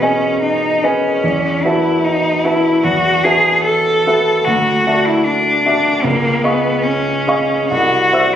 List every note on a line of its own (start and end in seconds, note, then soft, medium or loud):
0.00 1.25 B2 soft
0.00 0.42 C#4 soft
0.00 0.02 G#4 soft
0.00 0.79 G#4 soft
0.00 0.02 B4 soft
0.00 0.79 B4 soft
0.00 0.02 D#5 soft
0.00 0.79 D#5 soft
0.00 0.03 G#5 soft
0.00 0.79 G#5 soft
0.42 0.85 D#4 soft
0.83 1.65 C#4 soft
0.83 1.19 G#4 soft
0.83 1.19 B4 soft
0.83 1.19 D#5 soft
0.83 1.20 G#5 soft
1.24 1.62 E2 soft
1.63 2.06 E4 soft
1.63 2.41 F#4 soft
1.63 2.41 B4 soft
1.63 2.41 E5 soft
1.63 2.42 A5 soft
2.04 2.45 D#4 soft
2.44 2.86 E4 soft
2.44 2.80 F#4 soft
2.44 2.81 B4 soft
2.44 2.81 E5 soft
2.44 2.81 A5 soft
2.84 3.23 E2 soft
2.84 3.26 F#4 soft
3.24 4.02 F#4 soft
3.24 3.64 G#4 medium
3.24 4.02 B4 soft
3.24 4.02 E5 soft
3.24 4.02 A5 soft
3.65 4.46 A4 medium
4.07 4.43 F#4 soft
4.07 4.43 B4 soft
4.07 4.43 E5 soft
4.07 4.44 A5 soft
4.45 4.85 D2 soft
4.45 5.07 F#4 soft
4.87 5.62 F#4 soft
4.87 5.62 D5 soft
4.87 5.62 E5 soft
4.87 5.62 A5 soft
5.05 5.26 E4 soft
5.24 6.06 D4 soft
5.66 6.01 F#4 soft
5.66 6.01 D5 soft
5.66 6.01 E5 soft
5.66 6.02 A5 soft
6.04 6.42 C#2 soft
6.04 6.45 A#3 medium
6.43 6.84 B3 soft
6.43 7.23 G#4 soft
6.43 7.23 D#5 soft
6.43 7.24 F5 soft
6.43 7.24 C#6 soft
6.83 7.70 C#4 soft
7.27 7.68 G#4 soft
7.27 7.68 D#5 soft
7.27 7.68 F5 soft
7.27 7.68 C#6 soft
7.71 8.13 C2 soft
7.71 8.35 F#4 medium
8.13 8.36 C5 soft
8.13 8.36 D5 soft
8.13 8.36 E5 soft
8.13 8.36 E6 soft